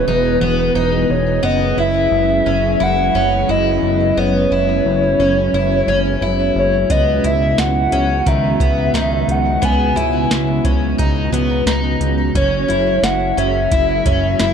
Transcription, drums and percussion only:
6.90 kick medium
6.90 closed hi-hat medium
7.24 closed hi-hat soft
7.58 snare loud
7.58 closed hi-hat medium
7.92 closed hi-hat soft
8.26 kick medium
8.26 closed hi-hat medium
8.60 kick medium
8.60 closed hi-hat medium
8.95 snare loud
8.95 closed hi-hat medium
9.29 closed hi-hat soft
9.62 kick medium
9.62 closed hi-hat medium
9.97 closed hi-hat soft
10.31 snare loud
10.31 closed hi-hat medium
10.65 kick medium
10.65 closed hi-hat soft
10.99 kick medium
10.99 closed hi-hat medium
11.34 closed hi-hat medium
11.67 snare loud
11.67 closed hi-hat medium
12.01 closed hi-hat soft
12.35 kick medium
12.35 closed hi-hat medium
12.70 closed hi-hat soft
13.04 snare loud
13.04 closed hi-hat medium
13.38 closed hi-hat soft
13.72 kick medium
13.72 closed hi-hat medium
14.05 kick medium
14.05 closed hi-hat medium
14.39 snare medium
14.39 closed hi-hat medium

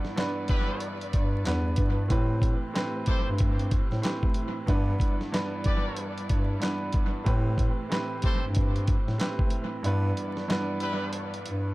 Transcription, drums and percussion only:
0.05 snare soft
0.18 snare loud
0.18 clap loud
0.18 closed hi-hat medium
0.48 kick medium
0.48 closed hi-hat medium
0.80 closed hi-hat loud
1.01 closed hi-hat soft
1.13 kick medium
1.13 closed hi-hat medium
1.45 snare loud
1.45 clap loud
1.45 closed hi-hat medium
1.76 kick medium
1.76 closed hi-hat medium
2.10 kick loud
2.10 closed hi-hat medium
2.42 kick loud
2.42 closed hi-hat medium
2.76 snare loud
2.76 clap loud
2.76 closed hi-hat medium
3.06 kick loud
3.06 closed hi-hat medium
3.38 kick medium
3.38 closed hi-hat loud
3.59 closed hi-hat soft
3.71 kick medium
3.71 closed hi-hat medium
3.92 snare soft
4.03 snare loud
4.03 clap loud
4.03 closed hi-hat medium
4.23 kick medium
4.34 closed hi-hat medium
4.68 kick loud
4.68 closed hi-hat medium
5.00 kick loud
5.00 closed hi-hat medium
5.21 snare soft
5.34 snare loud
5.34 clap medium
5.34 closed hi-hat medium
5.64 kick loud
5.64 closed hi-hat medium
5.97 closed hi-hat loud
6.18 closed hi-hat medium
6.29 kick medium
6.29 closed hi-hat medium
6.62 snare loud
6.62 clap loud
6.62 closed hi-hat medium
6.92 kick medium
6.92 closed hi-hat medium
7.26 kick loud
7.26 closed hi-hat medium
7.58 kick loud
7.58 closed hi-hat medium
7.92 snare loud
7.92 clap medium
7.92 closed hi-hat medium
8.22 kick loud
8.22 closed hi-hat medium
8.55 kick medium
8.55 closed hi-hat loud
8.76 closed hi-hat soft
8.87 kick medium
8.87 closed hi-hat medium
9.08 snare soft
9.20 snare loud
9.20 clap loud
9.20 closed hi-hat medium
9.39 kick loud
9.50 closed hi-hat medium
9.84 closed hi-hat medium
10.17 closed hi-hat medium
10.37 snare soft
10.50 snare loud
10.50 clap loud
10.50 closed hi-hat loud
10.80 closed hi-hat medium
11.13 closed hi-hat loud
11.34 closed hi-hat medium
11.46 closed hi-hat medium

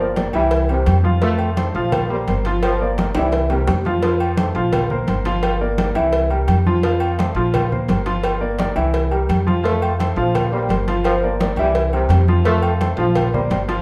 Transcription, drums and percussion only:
0.16 cowbell medium
0.16 high conga loud
0.16 low agogo medium
0.33 high conga soft
0.33 low agogo loud
0.51 cowbell loud
0.51 high conga soft
0.69 high conga soft
0.69 low agogo medium
0.86 cowbell medium
0.86 high conga medium
0.86 low timbale medium
0.86 low agogo loud
1.05 high conga medium
1.22 cowbell loud
1.22 high conga soft
1.39 high conga soft
1.39 low agogo loud
1.57 cowbell medium
1.57 high conga loud
1.57 low agogo medium
1.92 cowbell loud
1.92 high conga soft
1.92 low conga medium
1.92 low agogo loud
2.10 high conga soft
2.27 cowbell medium
2.27 high conga medium
2.27 low agogo medium
2.45 cowbell medium
2.45 high conga soft
2.63 cowbell loud
2.63 high conga soft
2.63 low agogo loud
2.82 high conga soft
2.98 cowbell medium
2.98 high conga loud
2.98 low agogo medium
3.15 high conga soft
3.15 high timbale loud
3.15 low agogo loud
3.32 cowbell loud
3.32 high conga soft
3.32 high timbale medium
3.50 high conga soft
3.50 low timbale medium
3.50 low agogo medium
3.67 cowbell medium
3.67 high conga medium
3.67 low timbale loud
3.67 low agogo loud
3.85 high conga medium
3.85 low timbale medium
4.03 cowbell loud
4.03 high conga soft
4.20 high conga soft
4.20 low agogo loud
4.37 cowbell medium
4.37 high conga loud
4.37 low agogo medium
4.73 cowbell loud
4.73 high conga soft
4.73 low conga medium
4.73 low agogo loud
4.90 high conga soft
4.90 low conga medium
5.07 cowbell medium
5.07 high conga medium
5.07 low agogo medium
5.25 cowbell medium
5.25 high conga soft
5.43 cowbell loud
5.43 high conga soft
5.43 low agogo loud
5.61 high conga soft
5.78 cowbell medium
5.78 high conga loud
5.78 low agogo medium
5.95 high conga soft
5.95 low agogo loud
6.13 cowbell loud
6.13 high conga soft
6.30 high conga soft
6.30 low agogo medium
6.48 cowbell medium
6.48 high conga medium
6.48 low agogo loud
6.67 high conga medium
6.83 cowbell loud
6.83 high conga soft
7.00 high conga soft
7.00 low agogo loud
7.19 cowbell medium
7.19 high conga loud
7.19 low agogo medium
7.54 cowbell loud
7.54 high conga soft
7.54 low conga medium
7.54 low agogo loud
7.72 high conga soft
7.72 low conga medium
7.89 cowbell medium
7.89 high conga medium
7.89 low timbale medium
7.89 low agogo medium
8.06 cowbell medium
8.06 high conga soft
8.23 cowbell loud
8.23 high conga soft
8.23 low agogo loud
8.42 high conga soft
8.59 cowbell medium
8.59 high conga loud
8.59 low agogo medium
8.76 high conga soft
8.76 low agogo loud
8.94 cowbell loud
8.94 high conga soft
9.11 high conga soft
9.11 low agogo loud
9.29 cowbell medium
9.29 high conga medium
9.29 low agogo loud
9.48 high conga medium
9.65 cowbell loud
9.65 high conga soft
9.82 high conga soft
9.82 low agogo loud
10.00 cowbell medium
10.00 high conga loud
10.00 low agogo medium
10.35 cowbell loud
10.35 high conga soft
10.35 low conga medium
10.35 low agogo loud
10.53 high conga soft
10.70 cowbell medium
10.70 high conga medium
10.70 low agogo medium
10.88 cowbell medium
10.88 high conga soft
11.04 cowbell loud
11.04 high conga soft
11.04 low agogo loud
11.23 high conga soft
11.40 cowbell medium
11.40 high conga loud
11.40 low agogo medium
11.57 high conga soft
11.57 low agogo loud
11.75 cowbell loud
11.75 high conga soft
11.93 high conga soft
11.93 low agogo medium
12.10 cowbell medium
12.10 high conga medium
12.10 low timbale medium
12.10 low agogo loud
12.28 high conga medium
12.45 cowbell loud
12.45 high conga soft
12.62 high conga soft
12.62 low agogo loud
12.81 cowbell medium
12.81 high conga loud
12.81 low agogo medium
13.15 cowbell loud
13.15 high conga soft
13.15 low conga medium
13.15 low agogo loud
13.34 high conga soft
13.34 low conga medium
13.51 cowbell medium
13.51 high conga medium
13.51 low timbale medium
13.51 low agogo medium
13.69 cowbell medium
13.69 high conga soft

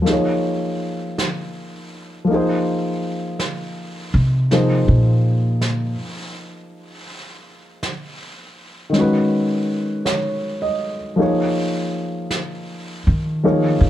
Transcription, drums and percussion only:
0.06 brush sweep soft
0.06 snare soft
1.18 brush sweep soft
1.18 snare soft
2.29 brush sweep soft
3.39 brush sweep soft
3.39 snare soft
4.51 brush sweep soft
4.51 snare soft
5.61 brush sweep soft
5.61 snare soft
6.72 brush sweep soft
7.83 brush sweep soft
7.83 snare soft
8.94 brush sweep soft
8.94 snare soft
10.06 brush sweep soft
10.06 snare soft
11.17 brush sweep soft
12.31 brush sweep soft
12.31 snare soft
13.44 brush sweep soft

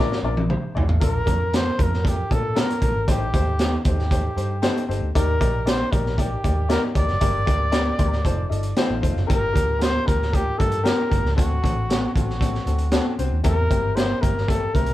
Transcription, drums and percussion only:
0.12 snare soft
0.37 high tom medium
0.50 mid tom medium
0.77 floor tom medium
0.89 floor tom medium
1.01 kick loud
1.01 closed hi-hat medium
1.27 kick medium
1.27 closed hi-hat medium
1.54 snare loud
1.54 closed hi-hat medium
1.79 kick medium
1.79 closed hi-hat medium
1.94 snare soft
2.05 kick medium
2.05 closed hi-hat medium
2.31 kick medium
2.31 closed hi-hat soft
2.56 snare loud
2.56 closed hi-hat medium
2.70 closed hi-hat soft
2.82 kick medium
2.82 closed hi-hat medium
3.08 kick loud
3.08 closed hi-hat medium
3.34 kick medium
3.34 closed hi-hat medium
3.59 snare medium
3.59 closed hi-hat medium
3.85 kick medium
3.85 closed hi-hat medium
3.99 snare soft
4.11 kick medium
4.11 closed hi-hat medium
4.38 closed hi-hat medium
4.63 snare loud
4.63 closed hi-hat medium
4.77 closed hi-hat soft
4.91 closed hi-hat medium
5.15 kick medium
5.15 closed hi-hat medium
5.41 kick medium
5.41 closed hi-hat medium
5.67 snare loud
5.67 closed hi-hat medium
5.93 kick medium
5.93 closed hi-hat medium
6.06 snare soft
6.18 kick medium
6.18 closed hi-hat medium
6.44 kick medium
6.44 closed hi-hat medium
6.70 snare loud
6.70 closed hi-hat medium
6.95 kick medium
6.95 closed hi-hat medium
7.08 snare soft
7.21 kick medium
7.21 closed hi-hat medium
7.47 kick medium
7.47 closed hi-hat medium
7.72 snare loud
7.72 closed hi-hat medium
7.99 kick medium
7.99 closed hi-hat medium
8.13 snare soft
8.25 kick medium
8.25 closed hi-hat medium
8.52 closed hi-hat medium
8.63 closed hi-hat soft
8.77 snare loud
8.77 closed hi-hat medium
9.03 kick medium
9.03 closed hi-hat medium
9.17 snare soft
9.30 kick loud
9.30 closed hi-hat medium
9.56 kick medium
9.56 closed hi-hat medium
9.81 snare medium
9.81 closed hi-hat medium
10.08 kick medium
10.08 closed hi-hat medium
10.22 snare soft
10.33 kick medium
10.33 closed hi-hat medium
10.60 kick medium
10.60 closed hi-hat medium
10.72 closed hi-hat soft
10.85 snare loud
10.85 closed hi-hat medium
11.12 kick medium
11.12 closed hi-hat medium
11.26 snare soft
11.38 kick medium
11.38 closed hi-hat medium
11.64 kick medium
11.64 closed hi-hat medium
11.90 snare loud
11.90 closed hi-hat medium
12.16 kick medium
12.16 closed hi-hat medium
12.30 snare soft
12.41 kick medium
12.41 closed hi-hat medium
12.55 snare soft
12.67 closed hi-hat medium
12.79 closed hi-hat soft
12.92 snare loud
12.92 closed hi-hat medium
13.19 closed hi-hat medium
13.44 kick loud
13.44 closed hi-hat medium
13.71 kick medium
13.71 closed hi-hat medium
13.97 snare medium
13.97 closed hi-hat medium
14.23 kick medium
14.23 closed hi-hat medium
14.38 snare soft
14.48 kick medium
14.48 closed hi-hat medium
14.75 kick medium
14.75 closed hi-hat medium
14.86 closed hi-hat soft

